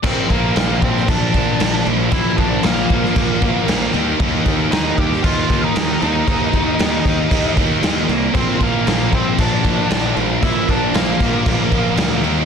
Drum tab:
CC |x-x-x-x-x-x-x-x-|x-x-x-x-x-x-x-x-|x-x-x-x-x-x-x-x-|x-x-x-x-x-x-x-x-|
SD |----o--o----o---|----o--o----o---|----o--o----o---|----o-------o---|
BD |o-o---o-o-o-----|o-o---o-o-o-----|o-o---o-o-o-----|o-o---o-o-o-----|

CC |x-x-x-x-x-x-x-x-|x-x-x-x-x-x-x-x-|
SD |----o-------o---|----o-------o---|
BD |o-o---o-o-o-----|o-o---o-o-o-----|